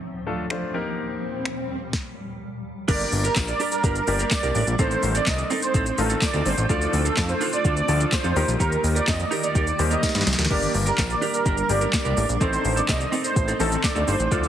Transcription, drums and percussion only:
0.50 finger snap
1.45 finger snap
1.93 kick, snare
2.88 kick, closed hi-hat, crash, shaker
3.00 closed hi-hat, shaker
3.12 open hi-hat, shaker
3.25 closed hi-hat, shaker
3.36 kick, snare, clap, closed hi-hat, tambourine, shaker
3.48 closed hi-hat, shaker
3.60 open hi-hat, shaker
3.72 closed hi-hat, shaker
3.84 kick, closed hi-hat, shaker
3.96 closed hi-hat, shaker
4.07 open hi-hat, shaker
4.19 closed hi-hat, shaker
4.31 kick, snare, clap, closed hi-hat, tambourine, shaker
4.43 closed hi-hat, shaker
4.55 open hi-hat, shaker
4.67 closed hi-hat, shaker
4.79 kick, closed hi-hat, shaker
4.91 closed hi-hat, shaker
5.03 open hi-hat, shaker
5.15 closed hi-hat, shaker
5.26 kick, snare, clap, closed hi-hat, tambourine, shaker
5.38 closed hi-hat, shaker
5.50 open hi-hat, shaker
5.62 closed hi-hat, shaker
5.74 kick, closed hi-hat, shaker
5.86 closed hi-hat, shaker
5.98 open hi-hat, shaker
6.10 closed hi-hat, shaker
6.22 kick, snare, clap, closed hi-hat, tambourine, shaker
6.34 closed hi-hat, shaker
6.46 open hi-hat, shaker
6.58 closed hi-hat, shaker
6.69 kick, closed hi-hat, shaker
6.82 closed hi-hat, shaker
6.93 open hi-hat, shaker
7.06 closed hi-hat, shaker
7.17 kick, snare, clap, closed hi-hat, tambourine, shaker
7.29 closed hi-hat, shaker
7.41 open hi-hat, shaker
7.53 closed hi-hat, shaker
7.65 kick, closed hi-hat, shaker
7.77 closed hi-hat, shaker
7.88 open hi-hat, shaker
8.00 closed hi-hat, shaker
8.12 kick, snare, clap, closed hi-hat, tambourine, shaker
8.24 closed hi-hat, shaker
8.36 open hi-hat, shaker
8.48 closed hi-hat, shaker
8.60 kick, closed hi-hat, shaker
8.72 closed hi-hat, shaker
8.84 open hi-hat, shaker
8.96 closed hi-hat, shaker
9.08 kick, snare, clap, closed hi-hat, tambourine, shaker
9.20 closed hi-hat, shaker
9.32 open hi-hat, shaker
9.43 closed hi-hat, shaker
9.55 kick, closed hi-hat, shaker
9.67 closed hi-hat, shaker
9.79 open hi-hat, shaker
9.91 closed hi-hat, shaker
10.03 kick, snare, closed hi-hat, tambourine, shaker
10.09 snare
10.15 snare, closed hi-hat, shaker
10.21 snare
10.27 snare, open hi-hat, shaker
10.33 snare
10.39 snare, closed hi-hat, shaker
10.45 snare
10.50 kick, crash
10.63 closed hi-hat, shaker
10.74 open hi-hat, shaker
10.87 closed hi-hat, shaker
10.98 kick, snare, clap, closed hi-hat, tambourine, shaker
11.10 closed hi-hat, shaker
11.22 open hi-hat, shaker
11.34 closed hi-hat, shaker
11.46 kick, closed hi-hat, shaker
11.58 closed hi-hat, shaker
11.69 open hi-hat, shaker
11.81 closed hi-hat, shaker
11.93 kick, snare, clap, closed hi-hat, tambourine, shaker
12.05 closed hi-hat, shaker
12.17 open hi-hat, shaker
12.29 closed hi-hat, shaker
12.41 kick, closed hi-hat, shaker
12.53 closed hi-hat, shaker
12.65 open hi-hat, shaker
12.77 closed hi-hat, shaker
12.88 kick, snare, clap, closed hi-hat, tambourine, shaker
13.01 closed hi-hat, shaker
13.13 open hi-hat, shaker
13.24 closed hi-hat, shaker
13.36 kick, closed hi-hat, shaker
13.48 closed hi-hat, shaker
13.60 open hi-hat, shaker
13.72 closed hi-hat, shaker
13.84 kick, snare, clap, closed hi-hat, tambourine, shaker
13.96 closed hi-hat, shaker
14.08 open hi-hat, shaker
14.20 closed hi-hat, shaker
14.31 kick, closed hi-hat, shaker
14.44 closed hi-hat, shaker

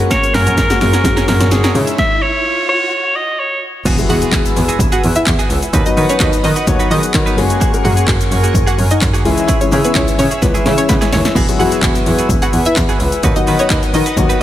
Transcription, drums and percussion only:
0.00 closed hi-hat
0.11 kick, snare, closed hi-hat, shaker
0.23 closed hi-hat, shaker
0.34 snare, open hi-hat, shaker
0.47 closed hi-hat, shaker
0.58 kick, snare, closed hi-hat, shaker
0.70 snare, closed hi-hat, shaker
0.81 snare, open hi-hat, shaker
0.93 snare, closed hi-hat, shaker
1.04 kick, snare, closed hi-hat, shaker
1.17 snare, closed hi-hat, shaker
1.28 snare, open hi-hat, shaker
1.40 snare, closed hi-hat, shaker
1.51 snare, closed hi-hat, shaker
1.64 snare, closed hi-hat, shaker
1.75 open hi-hat, shaker
1.87 closed hi-hat, shaker
1.98 kick, snare
3.86 kick, closed hi-hat, crash, shaker
3.98 closed hi-hat, shaker
4.10 open hi-hat, shaker
4.22 closed hi-hat, shaker
4.33 kick, clap, closed hi-hat, shaker
4.46 closed hi-hat, shaker
4.57 open hi-hat, shaker
4.69 closed hi-hat, shaker
4.80 kick, closed hi-hat, shaker
4.92 closed hi-hat, shaker
5.04 open hi-hat, shaker
5.16 closed hi-hat, shaker
5.26 kick, clap, closed hi-hat, shaker
5.39 closed hi-hat, shaker
5.50 open hi-hat, shaker
5.62 closed hi-hat, shaker
5.74 kick, closed hi-hat, shaker
5.86 closed hi-hat, shaker
5.97 open hi-hat, shaker
6.09 closed hi-hat, shaker
6.20 kick, clap, closed hi-hat, shaker
6.33 closed hi-hat, shaker
6.44 open hi-hat, shaker
6.56 closed hi-hat, shaker
6.67 kick, closed hi-hat, shaker
6.80 closed hi-hat, shaker
6.91 open hi-hat, shaker
7.03 closed hi-hat, shaker
7.14 kick, clap, closed hi-hat, shaker
7.26 closed hi-hat, shaker
7.38 open hi-hat, shaker
7.50 closed hi-hat, shaker
7.61 kick, closed hi-hat, shaker
7.74 closed hi-hat, shaker
7.85 open hi-hat, shaker
7.97 closed hi-hat, shaker
8.08 kick, clap, closed hi-hat, shaker
8.21 closed hi-hat, shaker
8.32 open hi-hat, shaker
8.44 closed hi-hat, shaker
8.55 kick, closed hi-hat, shaker
8.67 closed hi-hat, shaker
8.79 open hi-hat, shaker
8.91 closed hi-hat, shaker
9.01 kick, clap, closed hi-hat, shaker
9.14 closed hi-hat, shaker
9.25 open hi-hat, shaker
9.37 closed hi-hat, shaker
9.49 kick, closed hi-hat, shaker
9.61 closed hi-hat, shaker
9.72 open hi-hat, shaker
9.84 closed hi-hat, shaker
9.95 kick, clap, closed hi-hat, shaker
10.08 closed hi-hat, shaker
10.19 open hi-hat, shaker
10.31 closed hi-hat, shaker
10.42 kick, snare, closed hi-hat, shaker
10.55 closed hi-hat, shaker
10.66 snare, open hi-hat, shaker
10.78 closed hi-hat, shaker
10.89 kick, snare, closed hi-hat, shaker
11.02 snare, closed hi-hat, shaker
11.13 snare, open hi-hat, shaker
11.25 snare, closed hi-hat, shaker
11.36 kick, crash, shaker
11.48 closed hi-hat, shaker
11.60 open hi-hat, shaker
11.72 closed hi-hat, shaker
11.83 kick, clap, closed hi-hat, shaker
11.95 closed hi-hat, shaker
12.06 open hi-hat, shaker
12.18 closed hi-hat, shaker
12.30 kick, closed hi-hat, shaker
12.42 closed hi-hat, shaker
12.53 open hi-hat, shaker
12.65 closed hi-hat, shaker
12.76 kick, clap, closed hi-hat, shaker
12.89 closed hi-hat, shaker
13.00 open hi-hat, shaker
13.12 closed hi-hat, shaker
13.23 kick, closed hi-hat, shaker
13.36 closed hi-hat, shaker
13.47 open hi-hat, shaker
13.59 closed hi-hat, shaker
13.70 kick, clap, closed hi-hat, shaker
13.83 closed hi-hat, shaker
13.94 open hi-hat, shaker
14.06 closed hi-hat, shaker
14.17 kick, closed hi-hat, shaker
14.30 closed hi-hat, shaker

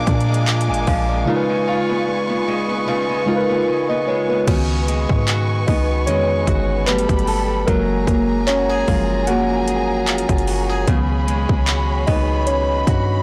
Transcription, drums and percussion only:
0.07 kick, closed hi-hat
0.21 closed hi-hat
0.34 closed hi-hat
0.47 clap, closed hi-hat
0.61 closed hi-hat
0.74 closed hi-hat
0.87 kick, open hi-hat
4.48 kick, closed hi-hat, crash
4.88 closed hi-hat
5.09 kick
5.28 clap, closed hi-hat
5.68 kick, open hi-hat
6.07 closed hi-hat
6.47 kick, closed hi-hat
6.87 clap, closed hi-hat
6.98 closed hi-hat
7.09 kick, closed hi-hat
7.19 closed hi-hat
7.27 open hi-hat
7.68 kick, closed hi-hat
8.07 kick, closed hi-hat
8.48 clap, closed hi-hat
8.88 kick, open hi-hat
9.27 closed hi-hat
9.68 closed hi-hat
10.07 clap, closed hi-hat
10.18 closed hi-hat
10.29 kick, closed hi-hat
10.38 closed hi-hat
10.47 open hi-hat
10.87 kick, closed hi-hat
11.28 closed hi-hat
11.49 kick
11.67 clap, closed hi-hat
12.07 kick, open hi-hat
12.47 closed hi-hat
12.87 kick, closed hi-hat

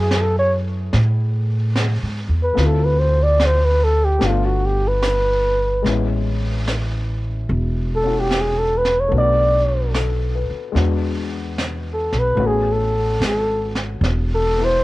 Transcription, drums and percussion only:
0.11 snare, hi-hat pedal
0.93 brush sweep, snare
1.76 snare, hi-hat pedal
2.57 brush sweep, snare
3.40 snare, hi-hat pedal
4.21 brush sweep, snare
5.03 snare, hi-hat pedal
5.86 brush sweep, snare
6.67 snare, hi-hat pedal
7.49 brush sweep
8.31 snare, hi-hat pedal
8.85 snare
9.13 brush sweep
9.95 snare, hi-hat pedal
10.76 brush sweep, snare
11.58 snare, hi-hat pedal
12.13 snare
12.40 brush sweep
13.22 snare, hi-hat pedal
13.75 snare
14.03 brush sweep, snare

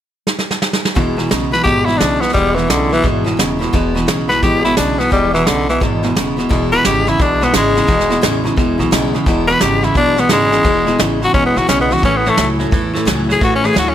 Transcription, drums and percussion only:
0.27 snare
0.39 snare
0.51 snare
0.62 snare
0.73 snare
0.85 snare
0.96 kick, snare
1.19 snare
1.31 snare, hi-hat pedal
1.53 snare
1.66 kick, snare
1.88 snare
2.00 snare, hi-hat pedal
2.22 snare
2.28 snare
2.35 kick, snare
2.57 snare
2.70 snare, hi-hat pedal
2.92 snare
3.04 kick, snare
3.26 snare
3.39 snare, hi-hat pedal
3.61 snare
3.74 kick, snare
3.96 snare
4.08 snare, hi-hat pedal
4.30 snare
4.42 kick, snare
4.65 snare
4.77 snare, hi-hat pedal
4.99 snare
5.12 kick, snare
5.34 snare
5.47 snare, hi-hat pedal
5.69 snare
5.81 kick, snare
6.03 snare
6.16 snare, hi-hat pedal
6.38 snare
6.51 kick, snare
6.72 snare
6.85 snare, hi-hat pedal
7.07 snare
7.20 kick, snare
7.42 snare
7.54 snare, hi-hat pedal
7.76 snare
7.89 kick, snare
8.00 snare
8.10 snare
8.23 snare, hi-hat pedal
8.45 snare
8.58 kick, snare
8.80 snare
8.92 snare, hi-hat pedal
9.14 snare
9.26 kick, snare
9.48 snare
9.61 snare, hi-hat pedal
9.82 snare
9.95 kick, snare
10.17 snare
10.29 snare, hi-hat pedal
10.52 snare
10.64 kick, snare
10.87 snare
10.99 snare, hi-hat pedal
11.22 snare
11.34 kick, snare
11.56 snare
11.69 snare, hi-hat pedal
11.91 snare
11.97 snare
12.03 kick, snare
12.26 snare
12.37 snare, hi-hat pedal
12.60 snare
12.72 kick, snare
12.95 snare
13.07 snare, hi-hat pedal
13.30 snare
13.41 kick, snare
13.63 snare
13.76 snare, hi-hat pedal

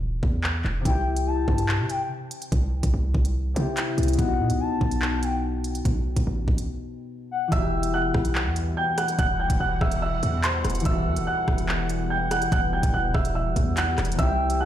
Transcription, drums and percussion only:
0.23 kick
0.44 clap
0.64 clap
0.85 kick, closed hi-hat
1.17 closed hi-hat
1.48 kick
1.58 closed hi-hat
1.69 clap
1.90 closed hi-hat
2.31 closed hi-hat
2.42 closed hi-hat
2.52 kick, closed hi-hat
2.83 kick, closed hi-hat
3.14 kick
3.25 closed hi-hat
3.56 closed hi-hat
3.77 clap, closed hi-hat
3.98 closed hi-hat
4.03 closed hi-hat
4.08 closed hi-hat
4.13 closed hi-hat
4.19 kick, closed hi-hat
4.50 closed hi-hat
4.81 kick
4.91 closed hi-hat
5.02 clap
5.23 closed hi-hat
5.64 closed hi-hat
5.75 closed hi-hat
5.85 kick, closed hi-hat
6.16 kick, closed hi-hat
6.48 kick
6.58 closed hi-hat
7.52 kick, closed hi-hat
7.83 closed hi-hat
8.14 kick, cross-stick
8.25 closed hi-hat
8.35 clap
8.56 closed hi-hat
8.98 cross-stick, closed hi-hat
9.08 closed hi-hat
9.19 kick, closed hi-hat
9.50 kick, closed hi-hat
9.81 kick, cross-stick
9.92 closed hi-hat
10.23 closed hi-hat
10.44 clap, closed hi-hat
10.64 cross-stick, closed hi-hat
10.70 closed hi-hat
10.75 closed hi-hat
10.80 closed hi-hat
10.85 kick, closed hi-hat
11.16 closed hi-hat
11.48 kick, cross-stick
11.58 closed hi-hat
11.69 clap
11.89 closed hi-hat
12.31 cross-stick, closed hi-hat
12.42 closed hi-hat
12.52 kick, closed hi-hat
12.83 kick, closed hi-hat
13.14 kick, cross-stick
13.25 closed hi-hat
13.56 kick, closed hi-hat
13.77 clap, closed hi-hat
13.98 cross-stick, clap, closed hi-hat
14.05 closed hi-hat
14.12 closed hi-hat
14.19 kick, closed hi-hat
14.50 closed hi-hat

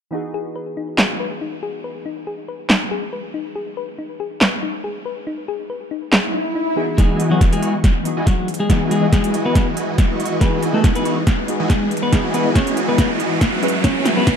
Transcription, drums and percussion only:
0.98 snare, clap
2.70 snare, clap
4.41 snare, clap
6.13 snare, clap
6.98 kick, snare, closed hi-hat
7.20 closed hi-hat
7.41 kick, snare, closed hi-hat
7.53 closed hi-hat
7.63 closed hi-hat
7.84 kick, snare, closed hi-hat
8.05 closed hi-hat
8.27 kick, snare, closed hi-hat
8.48 closed hi-hat
8.54 closed hi-hat
8.70 kick, snare, closed hi-hat
8.91 closed hi-hat
9.13 kick, snare, closed hi-hat
9.24 closed hi-hat
9.34 closed hi-hat
9.55 kick, snare, closed hi-hat
9.77 closed hi-hat
9.98 kick, snare, closed hi-hat
10.20 closed hi-hat
10.26 closed hi-hat
10.41 kick, snare, closed hi-hat
10.63 closed hi-hat
10.84 kick, snare, closed hi-hat
10.95 closed hi-hat
11.05 closed hi-hat
11.27 kick, snare, closed hi-hat
11.48 closed hi-hat
11.70 kick, snare, closed hi-hat
11.91 closed hi-hat
11.97 closed hi-hat
12.13 kick, snare, closed hi-hat
12.34 closed hi-hat
12.55 kick, snare, closed hi-hat
12.67 closed hi-hat
12.77 closed hi-hat
12.98 kick, snare, closed hi-hat
13.20 closed hi-hat
13.41 kick, snare, closed hi-hat
13.63 closed hi-hat
13.68 closed hi-hat
13.84 kick, snare, closed hi-hat
14.05 snare, closed hi-hat
14.27 kick, snare, closed hi-hat

